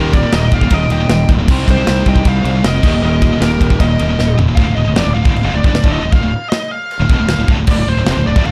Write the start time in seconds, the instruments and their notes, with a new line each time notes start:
Already playing: fingered electric bass D#1, distorted electric guitar D#2 A#2 D#3, overdriven electric guitar G3 G4, lead electric guitar G4 A#4
0.13 distorted electric guitar D#2 A#2, lead electric guitar A#4 D5, kick, ride
0.23 distorted electric guitar D#2 A#2
0.32 fingered electric bass D#1, distorted electric guitar D#2 A#2, lead electric guitar A#4 D#5, snare, ride
0.51 fingered electric bass D#1, distorted electric guitar D#2 A#2, lead electric guitar D5 F5, kick, ride
0.61 distorted electric guitar D#2 A#2, kick
0.70 fingered electric bass D#1, distorted electric guitar D#2 A#2, lead electric guitar A#4 D#5, kick, ride
0.90 fingered electric bass D#1, distorted electric guitar D#2 A#2, lead electric guitar D#5 G5, ride
1.00 distorted electric guitar D#2 A#2
1.09 fingered electric bass D#1, distorted electric guitar D#2 A#2, snare, ride
1.29 fingered electric bass D1, distorted electric guitar D#2 A#2, kick, ride
1.38 distorted electric guitar D#2 A#2
1.48 fingered electric bass C2, distorted electric guitar C3 G3 C4, overdriven electric guitar D#4 G4 C5, kick, crash
1.68 fingered electric bass C2, distorted electric guitar C3 G3, lead electric guitar G4 C5, kick, ride
1.77 distorted electric guitar C3 G3
1.87 fingered electric bass C2, distorted electric guitar C3 G3, snare, ride
2.06 fingered electric bass C2, distorted electric guitar C3 G3, lead electric guitar D#5 G5, kick, ride
2.16 distorted electric guitar C3 G3, kick
2.25 fingered electric bass C2, distorted electric guitar C3 G3, lead electric guitar C5 F5, kick, ride
2.44 fingered electric bass C2, distorted electric guitar C3 G3, ride
2.55 distorted electric guitar C3 G3
2.64 fingered electric bass F1, distorted electric guitar C3 G3, lead electric guitar A#4 D#5, snare, ride
2.83 fingered electric bass D#1, distorted electric guitar D#2 A#2 D#3, overdriven electric guitar G3 G4, kick, crash
2.93 distorted electric guitar D#2 A#2
3.03 fingered electric bass D#1, distorted electric guitar D#2 A#2, lead electric guitar A#4 D#5
3.22 distorted electric guitar D#2 A#2, kick, ride
3.32 distorted electric guitar D#2 A#2
3.41 fingered electric bass D#1, distorted electric guitar D#2 A#2, lead electric guitar G4 A#4, snare, ride
3.61 fingered electric bass D#1, distorted electric guitar D#2 A#2, kick, ride
3.70 distorted electric guitar D#2 A#2, kick
3.80 fingered electric bass D#1, distorted electric guitar D#2 A#2, lead electric guitar A#4 D#5, kick, ride
3.99 fingered electric bass D#1, distorted electric guitar D#2 A#2, ride
4.09 distorted electric guitar D#2 A#2
4.19 fingered electric bass D#1, distorted electric guitar D#2 A#2, snare
4.38 fingered electric bass D#1, distorted electric guitar D#2 A#2, floor tom
4.48 distorted electric guitar D#2 A#2
4.55 fingered electric bass D1, distorted electric guitar D2 A2, lead electric guitar F5, kick, china
4.67 fingered electric bass D1, distorted electric guitar D2 A2
4.75 fingered electric bass D1, distorted electric guitar D2 A2, lead electric guitar D#5
4.87 fingered electric bass D1, distorted electric guitar D2 A2
4.96 fingered electric bass F1, distorted electric guitar F2 C3, lead electric guitar D5, snare, china
5.06 fingered electric bass D1, distorted electric guitar D2 A2
5.14 fingered electric bass D1, distorted electric guitar D2 A2, lead electric guitar F5
5.25 fingered electric bass D1, distorted electric guitar D2 A2, kick
5.35 fingered electric bass D1, distorted electric guitar D2 A2, china
5.44 fingered electric bass F1, distorted electric guitar F2 C3
5.54 fingered electric bass D1, distorted electric guitar D2 A2, lead electric guitar D5
5.64 fingered electric bass G1, distorted electric guitar G2 D3, kick
5.73 fingered electric bass D1, distorted electric guitar D2 A2, snare, china
5.83 fingered electric bass D1, distorted electric guitar D2 A2 D3, kick
5.92 lead electric guitar D#5
6.03 fingered electric bass D1, distorted electric guitar D2 A2
6.12 fingered electric bass D1, distorted electric guitar D2 A2, lead electric guitar F5, kick, china
6.22 fingered electric bass D1, distorted electric guitar D2 A2
6.50 lead electric guitar D#5, snare, china
6.71 lead electric guitar F5
6.91 china
7.00 fingered electric bass D1, distorted electric guitar D2 A2
7.10 fingered electric bass E1, distorted electric guitar E2 B2, kick
7.19 fingered electric bass D1, distorted electric guitar D2 A2
7.28 fingered electric bass D1, distorted electric guitar D2 A2, snare, china
7.39 fingered electric bass D1, distorted electric guitar D2 A2
7.48 fingered electric bass D1, distorted electric guitar D2 A2, kick
7.57 fingered electric bass D1, distorted electric guitar D2 A2
7.67 fingered electric bass D1, distorted electric guitar D2 A2, lead electric guitar D5, kick, crash, china
7.78 fingered electric bass D1, distorted electric guitar D2 A2
7.87 fingered electric bass D1, distorted electric guitar D2 A2, lead electric guitar C5
7.97 fingered electric bass D1, distorted electric guitar D2 A2
8.06 fingered electric bass F1, distorted electric guitar F2 C3, snare, china
8.17 fingered electric bass D1, distorted electric guitar D2 A2
8.27 fingered electric bass D1, distorted electric guitar D2 A2, lead electric guitar D5
8.36 fingered electric bass D1, distorted electric guitar D2 A2, kick
8.45 fingered electric bass D1, distorted electric guitar D2 A2, lead electric guitar F5, china